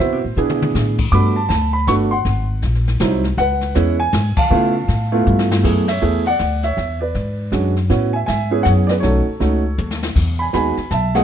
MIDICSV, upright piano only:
0, 0, Header, 1, 2, 480
1, 0, Start_track
1, 0, Time_signature, 3, 2, 24, 8
1, 0, Key_signature, 3, "minor"
1, 0, Tempo, 376412
1, 14331, End_track
2, 0, Start_track
2, 0, Title_t, "Upright piano"
2, 0, Program_c, 0, 0
2, 0, Note_on_c, 0, 59, 59
2, 0, Note_on_c, 0, 60, 48
2, 0, Note_on_c, 0, 72, 59
2, 0, Note_on_c, 0, 76, 95
2, 4, Note_on_c, 0, 64, 51
2, 6, Note_on_c, 0, 66, 61
2, 270, Note_off_c, 0, 76, 0
2, 271, Note_off_c, 0, 60, 0
2, 272, Note_off_c, 0, 59, 0
2, 274, Note_off_c, 0, 64, 0
2, 275, Note_off_c, 0, 66, 0
2, 450, Note_off_c, 0, 72, 0
2, 477, Note_on_c, 0, 59, 63
2, 482, Note_on_c, 0, 62, 62
2, 482, Note_on_c, 0, 68, 71
2, 484, Note_on_c, 0, 64, 63
2, 1199, Note_off_c, 0, 59, 0
2, 1202, Note_off_c, 0, 62, 0
2, 1202, Note_off_c, 0, 68, 0
2, 1203, Note_off_c, 0, 64, 0
2, 1428, Note_on_c, 0, 86, 97
2, 1442, Note_on_c, 0, 57, 57
2, 1448, Note_on_c, 0, 59, 54
2, 1452, Note_on_c, 0, 62, 55
2, 1452, Note_on_c, 0, 66, 60
2, 1460, Note_on_c, 0, 83, 75
2, 1712, Note_off_c, 0, 57, 0
2, 1715, Note_off_c, 0, 59, 0
2, 1717, Note_off_c, 0, 62, 0
2, 1717, Note_off_c, 0, 66, 0
2, 1737, Note_on_c, 0, 81, 79
2, 1761, Note_off_c, 0, 86, 0
2, 1878, Note_off_c, 0, 81, 0
2, 1897, Note_on_c, 0, 81, 89
2, 2180, Note_off_c, 0, 83, 0
2, 2187, Note_off_c, 0, 81, 0
2, 2209, Note_on_c, 0, 83, 82
2, 2377, Note_off_c, 0, 83, 0
2, 2396, Note_on_c, 0, 57, 66
2, 2396, Note_on_c, 0, 85, 99
2, 2399, Note_on_c, 0, 59, 64
2, 2403, Note_on_c, 0, 62, 66
2, 2403, Note_on_c, 0, 66, 68
2, 2465, Note_off_c, 0, 85, 0
2, 2668, Note_off_c, 0, 57, 0
2, 2670, Note_off_c, 0, 59, 0
2, 2672, Note_off_c, 0, 62, 0
2, 2672, Note_off_c, 0, 66, 0
2, 2691, Note_on_c, 0, 84, 82
2, 2711, Note_on_c, 0, 78, 61
2, 3140, Note_off_c, 0, 84, 0
2, 3314, Note_off_c, 0, 78, 0
2, 3834, Note_on_c, 0, 54, 61
2, 3836, Note_on_c, 0, 60, 61
2, 3842, Note_on_c, 0, 63, 60
2, 3842, Note_on_c, 0, 64, 68
2, 4106, Note_off_c, 0, 54, 0
2, 4107, Note_off_c, 0, 60, 0
2, 4110, Note_off_c, 0, 63, 0
2, 4110, Note_off_c, 0, 64, 0
2, 4311, Note_on_c, 0, 78, 91
2, 4339, Note_on_c, 0, 71, 59
2, 4782, Note_on_c, 0, 56, 66
2, 4785, Note_on_c, 0, 61, 64
2, 4787, Note_on_c, 0, 59, 63
2, 4789, Note_on_c, 0, 64, 73
2, 5056, Note_off_c, 0, 71, 0
2, 5059, Note_off_c, 0, 56, 0
2, 5061, Note_off_c, 0, 61, 0
2, 5062, Note_off_c, 0, 59, 0
2, 5063, Note_off_c, 0, 64, 0
2, 5095, Note_on_c, 0, 80, 108
2, 5117, Note_off_c, 0, 78, 0
2, 5572, Note_on_c, 0, 81, 96
2, 5588, Note_off_c, 0, 80, 0
2, 5593, Note_on_c, 0, 77, 67
2, 5751, Note_on_c, 0, 57, 78
2, 5751, Note_on_c, 0, 59, 65
2, 5757, Note_on_c, 0, 64, 64
2, 5757, Note_on_c, 0, 65, 79
2, 6023, Note_off_c, 0, 57, 0
2, 6023, Note_off_c, 0, 59, 0
2, 6026, Note_off_c, 0, 64, 0
2, 6026, Note_off_c, 0, 65, 0
2, 6530, Note_on_c, 0, 57, 78
2, 6532, Note_on_c, 0, 64, 64
2, 6533, Note_on_c, 0, 59, 70
2, 6538, Note_on_c, 0, 65, 76
2, 6657, Note_off_c, 0, 81, 0
2, 6667, Note_off_c, 0, 77, 0
2, 7151, Note_off_c, 0, 57, 0
2, 7153, Note_off_c, 0, 59, 0
2, 7153, Note_off_c, 0, 64, 0
2, 7156, Note_off_c, 0, 65, 0
2, 7182, Note_on_c, 0, 57, 57
2, 7186, Note_on_c, 0, 59, 55
2, 7188, Note_on_c, 0, 64, 58
2, 7193, Note_on_c, 0, 68, 68
2, 7458, Note_off_c, 0, 57, 0
2, 7460, Note_off_c, 0, 59, 0
2, 7461, Note_off_c, 0, 64, 0
2, 7464, Note_off_c, 0, 68, 0
2, 7500, Note_on_c, 0, 76, 87
2, 7525, Note_on_c, 0, 73, 60
2, 7672, Note_on_c, 0, 57, 62
2, 7672, Note_on_c, 0, 59, 55
2, 7673, Note_on_c, 0, 64, 53
2, 7679, Note_on_c, 0, 68, 65
2, 7943, Note_off_c, 0, 57, 0
2, 7943, Note_off_c, 0, 59, 0
2, 7943, Note_off_c, 0, 76, 0
2, 7944, Note_off_c, 0, 64, 0
2, 7947, Note_off_c, 0, 68, 0
2, 7956, Note_off_c, 0, 73, 0
2, 7995, Note_on_c, 0, 78, 96
2, 8010, Note_on_c, 0, 74, 72
2, 8439, Note_off_c, 0, 74, 0
2, 8467, Note_on_c, 0, 76, 87
2, 8478, Note_off_c, 0, 78, 0
2, 8484, Note_on_c, 0, 73, 64
2, 8907, Note_off_c, 0, 76, 0
2, 8916, Note_off_c, 0, 73, 0
2, 8934, Note_on_c, 0, 74, 62
2, 8949, Note_on_c, 0, 71, 52
2, 9584, Note_on_c, 0, 56, 55
2, 9590, Note_on_c, 0, 61, 49
2, 9593, Note_on_c, 0, 62, 50
2, 9594, Note_on_c, 0, 66, 57
2, 9843, Note_off_c, 0, 74, 0
2, 9851, Note_off_c, 0, 71, 0
2, 9860, Note_off_c, 0, 56, 0
2, 9863, Note_off_c, 0, 61, 0
2, 9865, Note_off_c, 0, 62, 0
2, 9865, Note_off_c, 0, 66, 0
2, 10070, Note_on_c, 0, 59, 66
2, 10072, Note_on_c, 0, 61, 65
2, 10072, Note_on_c, 0, 64, 58
2, 10080, Note_on_c, 0, 66, 69
2, 10344, Note_off_c, 0, 59, 0
2, 10344, Note_off_c, 0, 61, 0
2, 10344, Note_off_c, 0, 64, 0
2, 10348, Note_off_c, 0, 66, 0
2, 10371, Note_on_c, 0, 80, 88
2, 10405, Note_on_c, 0, 76, 66
2, 10434, Note_off_c, 0, 80, 0
2, 10469, Note_off_c, 0, 76, 0
2, 10537, Note_on_c, 0, 80, 85
2, 10568, Note_on_c, 0, 76, 75
2, 10854, Note_on_c, 0, 59, 64
2, 10858, Note_on_c, 0, 61, 62
2, 10858, Note_on_c, 0, 64, 61
2, 10864, Note_on_c, 0, 68, 67
2, 11006, Note_off_c, 0, 76, 0
2, 11006, Note_on_c, 0, 78, 92
2, 11039, Note_off_c, 0, 80, 0
2, 11046, Note_on_c, 0, 73, 66
2, 11077, Note_off_c, 0, 78, 0
2, 11113, Note_off_c, 0, 73, 0
2, 11310, Note_on_c, 0, 74, 81
2, 11356, Note_on_c, 0, 71, 61
2, 11373, Note_off_c, 0, 74, 0
2, 11420, Note_off_c, 0, 71, 0
2, 11475, Note_on_c, 0, 73, 78
2, 11476, Note_off_c, 0, 59, 0
2, 11478, Note_off_c, 0, 61, 0
2, 11478, Note_off_c, 0, 64, 0
2, 11481, Note_off_c, 0, 68, 0
2, 11507, Note_on_c, 0, 57, 52
2, 11511, Note_on_c, 0, 63, 49
2, 11512, Note_on_c, 0, 61, 54
2, 11515, Note_on_c, 0, 69, 62
2, 11516, Note_on_c, 0, 66, 58
2, 11783, Note_off_c, 0, 57, 0
2, 11784, Note_off_c, 0, 63, 0
2, 11785, Note_off_c, 0, 61, 0
2, 11787, Note_off_c, 0, 66, 0
2, 11989, Note_on_c, 0, 57, 63
2, 11990, Note_on_c, 0, 61, 53
2, 11993, Note_on_c, 0, 63, 56
2, 11998, Note_on_c, 0, 66, 63
2, 12264, Note_off_c, 0, 57, 0
2, 12264, Note_off_c, 0, 61, 0
2, 12266, Note_off_c, 0, 63, 0
2, 12268, Note_off_c, 0, 66, 0
2, 12707, Note_off_c, 0, 73, 0
2, 12727, Note_off_c, 0, 69, 0
2, 13251, Note_on_c, 0, 83, 77
2, 13281, Note_on_c, 0, 80, 66
2, 13315, Note_off_c, 0, 83, 0
2, 13344, Note_off_c, 0, 80, 0
2, 13427, Note_on_c, 0, 56, 55
2, 13428, Note_on_c, 0, 59, 53
2, 13431, Note_on_c, 0, 63, 54
2, 13436, Note_on_c, 0, 66, 62
2, 13442, Note_on_c, 0, 83, 90
2, 13467, Note_on_c, 0, 80, 71
2, 13703, Note_off_c, 0, 56, 0
2, 13704, Note_off_c, 0, 59, 0
2, 13705, Note_off_c, 0, 63, 0
2, 13708, Note_off_c, 0, 66, 0
2, 13898, Note_off_c, 0, 80, 0
2, 13915, Note_on_c, 0, 81, 88
2, 13932, Note_off_c, 0, 83, 0
2, 13945, Note_on_c, 0, 76, 69
2, 14196, Note_off_c, 0, 81, 0
2, 14212, Note_off_c, 0, 76, 0
2, 14214, Note_on_c, 0, 57, 74
2, 14218, Note_on_c, 0, 59, 66
2, 14220, Note_on_c, 0, 65, 64
2, 14223, Note_on_c, 0, 68, 80
2, 14224, Note_on_c, 0, 78, 80
2, 14249, Note_on_c, 0, 75, 62
2, 14331, Note_off_c, 0, 57, 0
2, 14331, Note_off_c, 0, 59, 0
2, 14331, Note_off_c, 0, 65, 0
2, 14331, Note_off_c, 0, 68, 0
2, 14331, Note_off_c, 0, 75, 0
2, 14331, Note_off_c, 0, 78, 0
2, 14331, End_track
0, 0, End_of_file